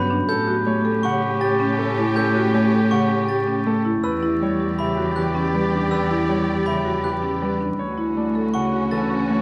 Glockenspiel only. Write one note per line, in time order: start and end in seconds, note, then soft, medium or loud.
0.00 0.16 B5 medium
0.29 0.53 G6 medium
1.03 1.28 C#6 loud
1.41 1.65 A6 medium
2.16 2.41 G6 medium
2.91 3.16 C#6 medium
3.28 3.53 A6 medium
4.04 4.28 E6 medium
4.79 5.03 B5 medium
5.16 5.40 F#6 medium
5.91 6.16 E6 medium
6.66 6.91 B5 medium
7.04 7.28 F#6 medium
8.54 8.78 C#6 medium
8.91 9.16 A6 medium